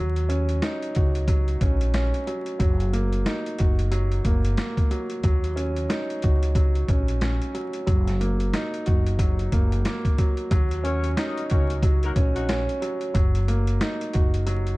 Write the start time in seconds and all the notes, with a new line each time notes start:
Already playing: D#2 F#3
0.16 closed hi-hat
0.29 C#4, closed hi-hat
0.49 closed hi-hat
0.62 D#4, snare, closed hi-hat
0.82 closed hi-hat
0.95 C#2 F#4, kick, closed hi-hat
1.15 closed hi-hat
1.28 F#3, kick, closed hi-hat
1.48 closed hi-hat
1.61 A#1 C#4, kick, closed hi-hat
1.81 closed hi-hat
1.94 C#4, snare, closed hi-hat
2.14 closed hi-hat
2.27 F#3, closed hi-hat
2.46 closed hi-hat
2.59 F#1 F#3, kick, closed hi-hat
2.80 closed hi-hat
2.93 A#3, closed hi-hat
3.13 closed hi-hat
3.26 D#4, snare, closed hi-hat
3.46 closed hi-hat
3.58 F#1 F#4, kick, closed hi-hat
3.79 closed hi-hat
3.91 F#3, closed hi-hat
4.12 closed hi-hat
4.25 F#1 A#3, kick, closed hi-hat
4.45 closed hi-hat
4.57 A#3, snare, closed hi-hat
4.77 kick, closed hi-hat
4.91 F#3, closed hi-hat
5.10 closed hi-hat
5.23 D#2 F#3, kick, closed hi-hat
5.44 closed hi-hat
5.56 C#4, closed hi-hat
5.76 closed hi-hat
5.89 D#4, snare, closed hi-hat
6.10 closed hi-hat
6.22 C#2 F#4, kick, closed hi-hat
6.43 closed hi-hat
6.55 F#3, kick, closed hi-hat
6.75 closed hi-hat
6.88 A#1 C#4, kick, closed hi-hat
7.08 closed hi-hat
7.21 C#4, snare, closed hi-hat
7.42 closed hi-hat
7.54 F#3, closed hi-hat
7.73 closed hi-hat
7.87 F#1 F#3, kick, closed hi-hat
8.08 snare, closed hi-hat
8.21 A#3, closed hi-hat
8.40 closed hi-hat
8.54 D#4, snare, closed hi-hat
8.74 closed hi-hat
8.86 F#1 F#4, kick, closed hi-hat
9.06 closed hi-hat
9.19 F#3, kick, closed hi-hat
9.39 closed hi-hat
9.52 F#1 A#3, kick, closed hi-hat
9.72 closed hi-hat
9.85 A#3, snare, closed hi-hat
10.05 kick, closed hi-hat
10.18 F#3, kick, closed hi-hat
10.37 closed hi-hat
10.51 D#2 F#3, kick, closed hi-hat
10.71 closed hi-hat
10.84 C#4 F#4 A#4 C#5, closed hi-hat
11.04 closed hi-hat
11.17 D#4 F#4 A#4 D#5, snare, closed hi-hat
11.37 closed hi-hat
11.50 C#2 C#4 F#4 A#4 C#5, kick, closed hi-hat
11.70 closed hi-hat
11.83 F#3, kick, closed hi-hat
12.03 A#3 D#4 F#4 A#4, closed hi-hat
12.16 A#1 C#4, kick, closed hi-hat
12.35 F#3 C#4 D#4 F#4, closed hi-hat
12.49 C#4, snare, closed hi-hat
12.69 closed hi-hat
12.82 F#3, closed hi-hat
13.01 closed hi-hat
13.14 F#1 F#3, kick, closed hi-hat
13.35 closed hi-hat
13.48 A#3, closed hi-hat
13.67 closed hi-hat
13.81 D#4, snare, closed hi-hat
14.01 closed hi-hat
14.13 F#1 F#4, kick, closed hi-hat
14.34 closed hi-hat
14.46 F#3, closed hi-hat
14.67 closed hi-hat